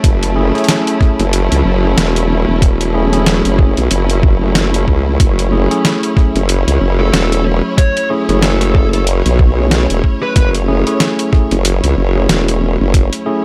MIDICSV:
0, 0, Header, 1, 6, 480
1, 0, Start_track
1, 0, Key_signature, 3, "minor"
1, 0, Tempo, 645161
1, 29, Time_signature, 4, 2, 24, 8
1, 10006, End_track
2, 0, Start_track
2, 0, Title_t, "Lead electric guitar"
2, 0, Program_c, 0, 29
2, 5207, Note_on_c, 0, 69, 90
2, 5288, Note_off_c, 0, 69, 0
2, 5308, Note_on_c, 0, 69, 89
2, 5523, Note_off_c, 0, 69, 0
2, 5788, Note_on_c, 0, 73, 94
2, 6004, Note_off_c, 0, 73, 0
2, 6268, Note_on_c, 0, 69, 91
2, 6358, Note_off_c, 0, 69, 0
2, 6406, Note_on_c, 0, 69, 81
2, 6472, Note_off_c, 0, 69, 0
2, 6508, Note_on_c, 0, 69, 91
2, 6598, Note_off_c, 0, 69, 0
2, 6648, Note_on_c, 0, 69, 80
2, 6713, Note_off_c, 0, 69, 0
2, 7607, Note_on_c, 0, 71, 89
2, 7672, Note_off_c, 0, 71, 0
2, 7707, Note_on_c, 0, 71, 78
2, 7797, Note_off_c, 0, 71, 0
2, 10006, End_track
3, 0, Start_track
3, 0, Title_t, "Tine electric piano"
3, 0, Program_c, 1, 4
3, 0, Note_on_c, 1, 57, 74
3, 0, Note_on_c, 1, 61, 67
3, 0, Note_on_c, 1, 64, 68
3, 0, Note_on_c, 1, 68, 85
3, 245, Note_off_c, 1, 57, 0
3, 245, Note_off_c, 1, 61, 0
3, 245, Note_off_c, 1, 64, 0
3, 245, Note_off_c, 1, 68, 0
3, 267, Note_on_c, 1, 57, 88
3, 267, Note_on_c, 1, 61, 86
3, 267, Note_on_c, 1, 64, 85
3, 267, Note_on_c, 1, 68, 101
3, 387, Note_off_c, 1, 57, 0
3, 387, Note_off_c, 1, 61, 0
3, 387, Note_off_c, 1, 64, 0
3, 387, Note_off_c, 1, 68, 0
3, 407, Note_on_c, 1, 57, 88
3, 408, Note_on_c, 1, 61, 81
3, 408, Note_on_c, 1, 64, 79
3, 408, Note_on_c, 1, 68, 94
3, 724, Note_off_c, 1, 57, 0
3, 725, Note_off_c, 1, 61, 0
3, 725, Note_off_c, 1, 64, 0
3, 725, Note_off_c, 1, 68, 0
3, 747, Note_on_c, 1, 57, 79
3, 747, Note_on_c, 1, 61, 71
3, 747, Note_on_c, 1, 64, 73
3, 747, Note_on_c, 1, 68, 89
3, 917, Note_off_c, 1, 57, 0
3, 917, Note_off_c, 1, 61, 0
3, 917, Note_off_c, 1, 64, 0
3, 917, Note_off_c, 1, 68, 0
3, 1368, Note_on_c, 1, 68, 83
3, 1369, Note_on_c, 1, 57, 72
3, 1369, Note_on_c, 1, 61, 69
3, 1369, Note_on_c, 1, 64, 66
3, 2165, Note_off_c, 1, 57, 0
3, 2165, Note_off_c, 1, 61, 0
3, 2165, Note_off_c, 1, 64, 0
3, 2165, Note_off_c, 1, 68, 0
3, 2188, Note_on_c, 1, 64, 81
3, 2188, Note_on_c, 1, 68, 103
3, 2189, Note_on_c, 1, 57, 90
3, 2189, Note_on_c, 1, 61, 84
3, 2307, Note_off_c, 1, 61, 0
3, 2307, Note_off_c, 1, 64, 0
3, 2307, Note_off_c, 1, 68, 0
3, 2308, Note_off_c, 1, 57, 0
3, 2328, Note_on_c, 1, 57, 82
3, 2329, Note_on_c, 1, 61, 81
3, 2329, Note_on_c, 1, 64, 77
3, 2329, Note_on_c, 1, 68, 98
3, 2645, Note_off_c, 1, 57, 0
3, 2645, Note_off_c, 1, 61, 0
3, 2645, Note_off_c, 1, 64, 0
3, 2645, Note_off_c, 1, 68, 0
3, 2669, Note_on_c, 1, 57, 78
3, 2669, Note_on_c, 1, 61, 69
3, 2669, Note_on_c, 1, 64, 71
3, 2669, Note_on_c, 1, 68, 85
3, 2838, Note_off_c, 1, 57, 0
3, 2838, Note_off_c, 1, 61, 0
3, 2838, Note_off_c, 1, 64, 0
3, 2838, Note_off_c, 1, 68, 0
3, 3286, Note_on_c, 1, 61, 66
3, 3286, Note_on_c, 1, 64, 69
3, 3286, Note_on_c, 1, 68, 79
3, 3287, Note_on_c, 1, 57, 74
3, 4084, Note_off_c, 1, 57, 0
3, 4084, Note_off_c, 1, 61, 0
3, 4084, Note_off_c, 1, 64, 0
3, 4084, Note_off_c, 1, 68, 0
3, 4106, Note_on_c, 1, 57, 90
3, 4106, Note_on_c, 1, 61, 83
3, 4106, Note_on_c, 1, 64, 82
3, 4106, Note_on_c, 1, 68, 101
3, 4226, Note_off_c, 1, 57, 0
3, 4226, Note_off_c, 1, 61, 0
3, 4226, Note_off_c, 1, 64, 0
3, 4226, Note_off_c, 1, 68, 0
3, 4248, Note_on_c, 1, 57, 87
3, 4248, Note_on_c, 1, 61, 75
3, 4248, Note_on_c, 1, 64, 78
3, 4248, Note_on_c, 1, 68, 96
3, 4565, Note_off_c, 1, 57, 0
3, 4565, Note_off_c, 1, 61, 0
3, 4565, Note_off_c, 1, 64, 0
3, 4565, Note_off_c, 1, 68, 0
3, 4587, Note_on_c, 1, 57, 77
3, 4587, Note_on_c, 1, 61, 71
3, 4587, Note_on_c, 1, 64, 71
3, 4588, Note_on_c, 1, 68, 88
3, 4757, Note_off_c, 1, 57, 0
3, 4757, Note_off_c, 1, 61, 0
3, 4757, Note_off_c, 1, 64, 0
3, 4757, Note_off_c, 1, 68, 0
3, 5206, Note_on_c, 1, 61, 69
3, 5206, Note_on_c, 1, 68, 80
3, 5207, Note_on_c, 1, 57, 73
3, 5207, Note_on_c, 1, 64, 70
3, 6004, Note_off_c, 1, 57, 0
3, 6004, Note_off_c, 1, 61, 0
3, 6004, Note_off_c, 1, 64, 0
3, 6004, Note_off_c, 1, 68, 0
3, 6027, Note_on_c, 1, 57, 90
3, 6027, Note_on_c, 1, 61, 87
3, 6027, Note_on_c, 1, 64, 84
3, 6027, Note_on_c, 1, 68, 107
3, 6147, Note_off_c, 1, 57, 0
3, 6147, Note_off_c, 1, 61, 0
3, 6147, Note_off_c, 1, 64, 0
3, 6147, Note_off_c, 1, 68, 0
3, 6166, Note_on_c, 1, 57, 89
3, 6166, Note_on_c, 1, 61, 77
3, 6166, Note_on_c, 1, 64, 82
3, 6166, Note_on_c, 1, 68, 97
3, 6484, Note_off_c, 1, 57, 0
3, 6484, Note_off_c, 1, 61, 0
3, 6484, Note_off_c, 1, 64, 0
3, 6484, Note_off_c, 1, 68, 0
3, 6506, Note_on_c, 1, 57, 76
3, 6506, Note_on_c, 1, 61, 72
3, 6506, Note_on_c, 1, 68, 83
3, 6507, Note_on_c, 1, 64, 74
3, 6677, Note_off_c, 1, 57, 0
3, 6677, Note_off_c, 1, 61, 0
3, 6677, Note_off_c, 1, 64, 0
3, 6677, Note_off_c, 1, 68, 0
3, 7126, Note_on_c, 1, 57, 74
3, 7126, Note_on_c, 1, 61, 65
3, 7126, Note_on_c, 1, 64, 67
3, 7127, Note_on_c, 1, 68, 86
3, 7924, Note_off_c, 1, 57, 0
3, 7924, Note_off_c, 1, 61, 0
3, 7924, Note_off_c, 1, 64, 0
3, 7924, Note_off_c, 1, 68, 0
3, 7946, Note_on_c, 1, 61, 85
3, 7946, Note_on_c, 1, 64, 80
3, 7946, Note_on_c, 1, 68, 102
3, 7947, Note_on_c, 1, 57, 97
3, 8066, Note_off_c, 1, 57, 0
3, 8066, Note_off_c, 1, 61, 0
3, 8066, Note_off_c, 1, 64, 0
3, 8066, Note_off_c, 1, 68, 0
3, 8085, Note_on_c, 1, 64, 80
3, 8085, Note_on_c, 1, 68, 93
3, 8086, Note_on_c, 1, 57, 90
3, 8086, Note_on_c, 1, 61, 81
3, 8403, Note_off_c, 1, 64, 0
3, 8403, Note_off_c, 1, 68, 0
3, 8404, Note_off_c, 1, 57, 0
3, 8404, Note_off_c, 1, 61, 0
3, 8426, Note_on_c, 1, 57, 80
3, 8426, Note_on_c, 1, 61, 71
3, 8426, Note_on_c, 1, 64, 72
3, 8427, Note_on_c, 1, 68, 91
3, 8597, Note_off_c, 1, 57, 0
3, 8597, Note_off_c, 1, 61, 0
3, 8597, Note_off_c, 1, 64, 0
3, 8597, Note_off_c, 1, 68, 0
3, 9045, Note_on_c, 1, 57, 72
3, 9045, Note_on_c, 1, 64, 67
3, 9045, Note_on_c, 1, 68, 88
3, 9046, Note_on_c, 1, 61, 69
3, 9843, Note_off_c, 1, 57, 0
3, 9843, Note_off_c, 1, 64, 0
3, 9843, Note_off_c, 1, 68, 0
3, 9844, Note_off_c, 1, 61, 0
3, 9865, Note_on_c, 1, 57, 91
3, 9866, Note_on_c, 1, 61, 81
3, 9866, Note_on_c, 1, 64, 86
3, 9866, Note_on_c, 1, 68, 103
3, 9986, Note_off_c, 1, 57, 0
3, 9986, Note_off_c, 1, 61, 0
3, 9986, Note_off_c, 1, 64, 0
3, 9986, Note_off_c, 1, 68, 0
3, 10006, End_track
4, 0, Start_track
4, 0, Title_t, "String section"
4, 0, Program_c, 2, 48
4, 0, Note_on_c, 2, 54, 75
4, 0, Note_on_c, 2, 57, 84
4, 0, Note_on_c, 2, 61, 71
4, 0, Note_on_c, 2, 64, 71
4, 3868, Note_off_c, 2, 57, 0
4, 3869, Note_on_c, 2, 73, 82
4, 10006, Note_off_c, 2, 54, 0
4, 10006, Note_off_c, 2, 61, 0
4, 10006, Note_off_c, 2, 64, 0
4, 10006, Note_off_c, 2, 73, 0
4, 10006, End_track
5, 0, Start_track
5, 0, Title_t, "Wobble bass"
5, 0, Program_c, 3, 39
5, 29, Note_on_c, 3, 30, 106
5, 386, Note_off_c, 3, 30, 0
5, 890, Note_on_c, 3, 30, 100
5, 1107, Note_off_c, 3, 30, 0
5, 1130, Note_on_c, 3, 37, 102
5, 1214, Note_off_c, 3, 37, 0
5, 1228, Note_on_c, 3, 30, 96
5, 1453, Note_off_c, 3, 30, 0
5, 1469, Note_on_c, 3, 28, 94
5, 1826, Note_off_c, 3, 28, 0
5, 1849, Note_on_c, 3, 28, 93
5, 2546, Note_off_c, 3, 28, 0
5, 2569, Note_on_c, 3, 30, 103
5, 2786, Note_off_c, 3, 30, 0
5, 2811, Note_on_c, 3, 35, 102
5, 2894, Note_off_c, 3, 35, 0
5, 2910, Note_on_c, 3, 30, 101
5, 3613, Note_off_c, 3, 30, 0
5, 3628, Note_on_c, 3, 37, 101
5, 3853, Note_off_c, 3, 37, 0
5, 3869, Note_on_c, 3, 30, 103
5, 4226, Note_off_c, 3, 30, 0
5, 4727, Note_on_c, 3, 30, 105
5, 4945, Note_off_c, 3, 30, 0
5, 4966, Note_on_c, 3, 37, 102
5, 5052, Note_off_c, 3, 37, 0
5, 5066, Note_on_c, 3, 30, 101
5, 5292, Note_off_c, 3, 30, 0
5, 5307, Note_on_c, 3, 28, 93
5, 5665, Note_off_c, 3, 28, 0
5, 6167, Note_on_c, 3, 30, 97
5, 6865, Note_off_c, 3, 30, 0
5, 6887, Note_on_c, 3, 35, 97
5, 7345, Note_off_c, 3, 35, 0
5, 7367, Note_on_c, 3, 28, 96
5, 7452, Note_off_c, 3, 28, 0
5, 7707, Note_on_c, 3, 30, 103
5, 8065, Note_off_c, 3, 30, 0
5, 8567, Note_on_c, 3, 30, 101
5, 8785, Note_off_c, 3, 30, 0
5, 8806, Note_on_c, 3, 37, 99
5, 8892, Note_off_c, 3, 37, 0
5, 8905, Note_on_c, 3, 30, 98
5, 9131, Note_off_c, 3, 30, 0
5, 9146, Note_on_c, 3, 28, 91
5, 9505, Note_off_c, 3, 28, 0
5, 9527, Note_on_c, 3, 30, 94
5, 9745, Note_off_c, 3, 30, 0
5, 10006, End_track
6, 0, Start_track
6, 0, Title_t, "Drums"
6, 29, Note_on_c, 9, 36, 127
6, 29, Note_on_c, 9, 42, 84
6, 103, Note_off_c, 9, 36, 0
6, 103, Note_off_c, 9, 42, 0
6, 169, Note_on_c, 9, 42, 57
6, 243, Note_off_c, 9, 42, 0
6, 410, Note_on_c, 9, 42, 18
6, 431, Note_off_c, 9, 42, 0
6, 431, Note_on_c, 9, 42, 24
6, 476, Note_off_c, 9, 42, 0
6, 476, Note_on_c, 9, 42, 30
6, 510, Note_off_c, 9, 42, 0
6, 510, Note_on_c, 9, 38, 127
6, 510, Note_on_c, 9, 42, 85
6, 584, Note_off_c, 9, 38, 0
6, 584, Note_off_c, 9, 42, 0
6, 649, Note_on_c, 9, 42, 52
6, 724, Note_off_c, 9, 42, 0
6, 749, Note_on_c, 9, 36, 106
6, 749, Note_on_c, 9, 40, 36
6, 823, Note_off_c, 9, 36, 0
6, 823, Note_off_c, 9, 40, 0
6, 889, Note_on_c, 9, 42, 37
6, 963, Note_off_c, 9, 42, 0
6, 990, Note_on_c, 9, 42, 80
6, 1064, Note_off_c, 9, 42, 0
6, 1129, Note_on_c, 9, 42, 54
6, 1204, Note_off_c, 9, 42, 0
6, 1470, Note_on_c, 9, 38, 127
6, 1470, Note_on_c, 9, 42, 84
6, 1544, Note_off_c, 9, 38, 0
6, 1544, Note_off_c, 9, 42, 0
6, 1609, Note_on_c, 9, 42, 56
6, 1684, Note_off_c, 9, 42, 0
6, 1949, Note_on_c, 9, 36, 127
6, 1950, Note_on_c, 9, 42, 76
6, 2023, Note_off_c, 9, 36, 0
6, 2024, Note_off_c, 9, 42, 0
6, 2089, Note_on_c, 9, 42, 53
6, 2163, Note_off_c, 9, 42, 0
6, 2328, Note_on_c, 9, 42, 37
6, 2402, Note_off_c, 9, 42, 0
6, 2429, Note_on_c, 9, 38, 125
6, 2429, Note_on_c, 9, 42, 82
6, 2503, Note_off_c, 9, 38, 0
6, 2503, Note_off_c, 9, 42, 0
6, 2568, Note_on_c, 9, 42, 51
6, 2642, Note_off_c, 9, 42, 0
6, 2669, Note_on_c, 9, 36, 104
6, 2743, Note_off_c, 9, 36, 0
6, 2807, Note_on_c, 9, 42, 36
6, 2882, Note_off_c, 9, 42, 0
6, 2907, Note_on_c, 9, 42, 81
6, 2981, Note_off_c, 9, 42, 0
6, 3047, Note_on_c, 9, 42, 54
6, 3121, Note_off_c, 9, 42, 0
6, 3149, Note_on_c, 9, 36, 107
6, 3223, Note_off_c, 9, 36, 0
6, 3386, Note_on_c, 9, 38, 127
6, 3386, Note_on_c, 9, 42, 85
6, 3461, Note_off_c, 9, 38, 0
6, 3461, Note_off_c, 9, 42, 0
6, 3528, Note_on_c, 9, 42, 53
6, 3602, Note_off_c, 9, 42, 0
6, 3629, Note_on_c, 9, 36, 64
6, 3703, Note_off_c, 9, 36, 0
6, 3868, Note_on_c, 9, 36, 120
6, 3868, Note_on_c, 9, 42, 76
6, 3943, Note_off_c, 9, 36, 0
6, 3943, Note_off_c, 9, 42, 0
6, 4009, Note_on_c, 9, 42, 51
6, 4084, Note_off_c, 9, 42, 0
6, 4250, Note_on_c, 9, 42, 35
6, 4324, Note_off_c, 9, 42, 0
6, 4351, Note_on_c, 9, 38, 123
6, 4351, Note_on_c, 9, 42, 78
6, 4425, Note_off_c, 9, 38, 0
6, 4425, Note_off_c, 9, 42, 0
6, 4488, Note_on_c, 9, 42, 49
6, 4563, Note_off_c, 9, 42, 0
6, 4588, Note_on_c, 9, 36, 105
6, 4589, Note_on_c, 9, 40, 33
6, 4663, Note_off_c, 9, 36, 0
6, 4664, Note_off_c, 9, 40, 0
6, 4729, Note_on_c, 9, 42, 35
6, 4803, Note_off_c, 9, 42, 0
6, 4828, Note_on_c, 9, 42, 80
6, 4903, Note_off_c, 9, 42, 0
6, 4969, Note_on_c, 9, 42, 52
6, 5043, Note_off_c, 9, 42, 0
6, 5309, Note_on_c, 9, 38, 127
6, 5309, Note_on_c, 9, 42, 81
6, 5383, Note_off_c, 9, 38, 0
6, 5383, Note_off_c, 9, 42, 0
6, 5448, Note_on_c, 9, 42, 52
6, 5523, Note_off_c, 9, 42, 0
6, 5788, Note_on_c, 9, 36, 125
6, 5788, Note_on_c, 9, 42, 76
6, 5862, Note_off_c, 9, 36, 0
6, 5863, Note_off_c, 9, 42, 0
6, 5928, Note_on_c, 9, 42, 50
6, 6002, Note_off_c, 9, 42, 0
6, 6168, Note_on_c, 9, 42, 35
6, 6243, Note_off_c, 9, 42, 0
6, 6268, Note_on_c, 9, 38, 124
6, 6268, Note_on_c, 9, 42, 77
6, 6343, Note_off_c, 9, 38, 0
6, 6343, Note_off_c, 9, 42, 0
6, 6407, Note_on_c, 9, 42, 51
6, 6481, Note_off_c, 9, 42, 0
6, 6508, Note_on_c, 9, 36, 102
6, 6582, Note_off_c, 9, 36, 0
6, 6647, Note_on_c, 9, 42, 35
6, 6721, Note_off_c, 9, 42, 0
6, 6747, Note_on_c, 9, 42, 78
6, 6822, Note_off_c, 9, 42, 0
6, 6888, Note_on_c, 9, 42, 49
6, 6962, Note_off_c, 9, 42, 0
6, 6988, Note_on_c, 9, 36, 103
6, 7062, Note_off_c, 9, 36, 0
6, 7226, Note_on_c, 9, 38, 123
6, 7226, Note_on_c, 9, 42, 79
6, 7301, Note_off_c, 9, 38, 0
6, 7301, Note_off_c, 9, 42, 0
6, 7366, Note_on_c, 9, 42, 55
6, 7441, Note_off_c, 9, 42, 0
6, 7468, Note_on_c, 9, 36, 60
6, 7543, Note_off_c, 9, 36, 0
6, 7706, Note_on_c, 9, 42, 74
6, 7708, Note_on_c, 9, 36, 123
6, 7781, Note_off_c, 9, 42, 0
6, 7782, Note_off_c, 9, 36, 0
6, 7846, Note_on_c, 9, 42, 51
6, 7920, Note_off_c, 9, 42, 0
6, 8085, Note_on_c, 9, 42, 36
6, 8160, Note_off_c, 9, 42, 0
6, 8185, Note_on_c, 9, 38, 113
6, 8185, Note_on_c, 9, 42, 82
6, 8260, Note_off_c, 9, 38, 0
6, 8260, Note_off_c, 9, 42, 0
6, 8326, Note_on_c, 9, 42, 54
6, 8400, Note_off_c, 9, 42, 0
6, 8427, Note_on_c, 9, 40, 36
6, 8428, Note_on_c, 9, 36, 102
6, 8501, Note_off_c, 9, 40, 0
6, 8502, Note_off_c, 9, 36, 0
6, 8566, Note_on_c, 9, 42, 37
6, 8640, Note_off_c, 9, 42, 0
6, 8666, Note_on_c, 9, 42, 85
6, 8741, Note_off_c, 9, 42, 0
6, 8806, Note_on_c, 9, 42, 51
6, 8881, Note_off_c, 9, 42, 0
6, 9146, Note_on_c, 9, 38, 123
6, 9146, Note_on_c, 9, 42, 81
6, 9221, Note_off_c, 9, 38, 0
6, 9221, Note_off_c, 9, 42, 0
6, 9288, Note_on_c, 9, 42, 57
6, 9363, Note_off_c, 9, 42, 0
6, 9627, Note_on_c, 9, 36, 117
6, 9628, Note_on_c, 9, 42, 79
6, 9702, Note_off_c, 9, 36, 0
6, 9702, Note_off_c, 9, 42, 0
6, 9766, Note_on_c, 9, 42, 54
6, 9840, Note_off_c, 9, 42, 0
6, 10006, End_track
0, 0, End_of_file